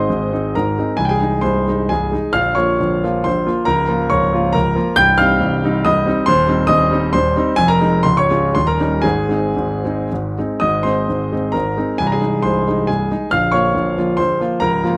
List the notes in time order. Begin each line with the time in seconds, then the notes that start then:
Already playing: G#1 G#2 G#3 C4 D#4 C5 D#5 C6 D#6
0.09 G#1 G#2
0.32 G#3 C4 D#4
0.55 G#1 G#2 A#4 A#5
0.78 G#3 C4 D#4
0.97 C1 C2 G#5
1.05 G5
1.09 G#4 G#5
1.21 G#3 D#4
1.41 C1 C2 C5 C6
1.69 G#3 D#4
1.89 C1 C2 G#4 G#5
2.12 G#3 D#4
2.33 A#0 A#1 F5 F6
2.55 F3 A#3 F4 C#5 C#6
2.80 A#0 A#1
3.03 F3 A#3 F4
3.24 A#0 A#1 C5 C6
3.46 F3 A#3 F4
3.65 C#1 C#2 A#4 A#5
3.88 F3 A#3 F4
4.10 C#1 C#2 C#5 C#6
4.33 F3 A#3 F4
4.53 C#1 C#2 A#4 A#5
4.76 F3 A#3 F4
4.96 C1 C2 G5 G6
5.18 G3 C4 D#4 F5 F6
5.40 C1 C2
5.64 G3 C4 D#4
5.85 C1 C2 D#5 D#6
6.06 G3 C4 D#4
6.26 D#1 D#2 C5 C6
6.48 G3 C4 D#4
6.67 D#1 D#2 D#5 D#6
6.91 G3 C4 D#4
7.13 D#1 D#2 C5 C6
7.36 G3 C4 D#4
7.56 F1 F2 G#5
7.68 A#4 A#5
7.81 G#3 C4 D#4
8.03 C#1 C#2 C6
8.17 C#5 C#6
8.30 G#3 C#4 F4
8.55 D#1 D#2 C6
8.67 A#4 A#5
8.80 G3 C#4 D#4
9.02 G#1 G#2 G#4 G#5
9.28 G#3 C4 D#4
9.56 G#1 G#2
9.85 G#3 C4 D#4
10.12 G#1 G#2
10.38 G#3 C4 D#4
10.60 G#1 G#2 D#5 D#6
10.83 G#3 C4 D#4 C5 C6
11.09 G#1 G#2
11.32 G#3 C4 D#4
11.52 G#1 G#2 A#4 A#5
11.77 G#3 C4 D#4
11.98 C1 C2 G#5
12.07 A#5
12.12 G#4 G#5
12.21 G#3 D#4
12.43 C1 C2 C5 C6
12.68 G#3 D#4
12.87 C1 C2 G#4 G#5
13.11 G#3 D#4
13.31 A#0 A#1 F5 F6
13.52 F3 A#3 F4 C#5 C#6
13.75 A#0 A#1
13.98 F3 A#3 F4
14.17 A#0 A#1 C5 C6
14.40 F3 A#3 F4
14.60 C#1 C#2 A#4 A#5
14.83 F3 A#3 F4